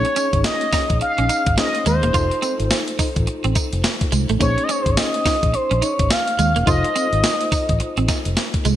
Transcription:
Already playing: C#4 D#4 G#4 C#5
0.05 muted clean electric guitar stroke, closed hi-hat
0.16 C#4, closed hi-hat, tambourine
0.33 G#1, kick, closed hi-hat
0.44 D#5, snare, closed hi-hat, tambourine
0.61 closed hi-hat
0.72 D#4, muted fingered electric bass stroke, kick, snare, open hi-hat, tambourine
0.90 A#1, kick, closed hi-hat
1.01 F5, muted clean electric guitar stroke, closed hi-hat
1.18 A#1 C#4, closed hi-hat
1.29 D#4, closed hi-hat, tambourine
1.46 G#1, kick, closed hi-hat
1.57 C#4 D#4 G#4 C5 D#5, muted clean electric guitar stroke, snare, closed hi-hat, tambourine
1.75 closed hi-hat
1.86 D#2 G#3 C5, closed hi-hat, tambourine
2.03 E1 A#3, closed hi-hat
2.13 F1 D#4 F4 A4 C5, kick, closed hi-hat, tambourine
2.31 muted clean electric guitar stroke, closed hi-hat
2.42 C4, closed hi-hat, tambourine
2.60 G#1, closed hi-hat
2.71 snare, closed hi-hat, tambourine
2.88 closed hi-hat
2.99 D#4, muted fingered electric bass stroke, kick, open hi-hat, tambourine
3.16 A1, kick, closed hi-hat
3.27 muted clean electric guitar stroke, closed hi-hat
3.44 A1 C4, closed hi-hat
3.55 D#4, kick, closed hi-hat, tambourine
3.73 F1, closed hi-hat
3.84 muted clean electric guitar stroke, snare, closed hi-hat, tambourine
4.01 kick, closed hi-hat
4.12 C2 G#3, closed hi-hat, tambourine
4.29 A1 A3, closed hi-hat
4.39 A#1 A#3 C#4 D#4 G#4 C5 C#5, kick, closed hi-hat, tambourine
4.58 muted clean electric guitar stroke, closed hi-hat
4.63 D#5
4.69 C#4 C#5, closed hi-hat, tambourine
4.82 C5
4.86 G#1, kick, closed hi-hat
4.91 C#5
4.97 D#5, snare, closed hi-hat, tambourine
5.14 closed hi-hat
5.26 D#4, muted fingered electric bass stroke, kick, snare, open hi-hat, tambourine
5.43 A#1, kick, closed hi-hat
5.54 C5, muted clean electric guitar stroke, closed hi-hat
5.71 A#1 C#4, closed hi-hat
5.82 D#4 C#5, closed hi-hat, tambourine
5.99 G#1, kick, closed hi-hat
6.10 F5, muted clean electric guitar stroke, snare, closed hi-hat, tambourine
6.28 closed hi-hat
6.39 D#2 G#3, closed hi-hat, tambourine
6.56 E1 A#3, closed hi-hat
6.66 F1 D#4 F4 A4 C5 D#5, kick, closed hi-hat, tambourine
6.84 muted clean electric guitar stroke, closed hi-hat
6.96 C4, closed hi-hat, tambourine
7.13 G#1, closed hi-hat
7.24 snare, closed hi-hat, tambourine
7.41 closed hi-hat
7.52 D#4, muted fingered electric bass stroke, kick, open hi-hat, tambourine
7.69 A1, kick, closed hi-hat
7.80 muted clean electric guitar stroke, closed hi-hat
7.97 A1 C4, closed hi-hat
8.08 D#4, kick, snare, closed hi-hat, tambourine
8.25 F1, closed hi-hat
8.37 muted clean electric guitar stroke, snare, closed hi-hat, tambourine
8.54 kick, closed hi-hat
8.65 C2 G#3, closed hi-hat, tambourine

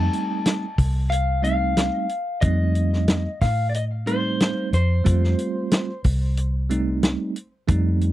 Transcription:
Already playing: G3 A3 C4 D#4 A5
0.13 closed hi-hat
0.45 snare, closed hi-hat
0.78 C2, kick, open hi-hat
1.10 F5, closed hi-hat
1.42 G3 A3 C4 D#4 F5, closed hi-hat
1.77 snare, closed hi-hat
2.09 closed hi-hat
2.41 F2 G3 A3 C4 D#4 D#5, kick, closed hi-hat
2.75 closed hi-hat
2.93 snare
3.08 snare, closed hi-hat
3.41 A2 F5, kick, snare, open hi-hat
3.69 D5
3.74 D#5, closed hi-hat
4.06 G3 A3 C4 D#4 C5, closed hi-hat
4.40 snare, closed hi-hat
4.73 F2 C5, closed hi-hat
5.04 F2 G3 A3 C4 F4, kick, closed hi-hat
5.24 snare
5.39 closed hi-hat
5.71 snare, closed hi-hat
6.04 C2, kick, open hi-hat
6.37 closed hi-hat
6.70 G3 A3 C4 D#4, closed hi-hat
7.03 snare, closed hi-hat
7.36 closed hi-hat
7.67 F2 G3 A3 C4 D#4, kick, closed hi-hat
8.01 closed hi-hat

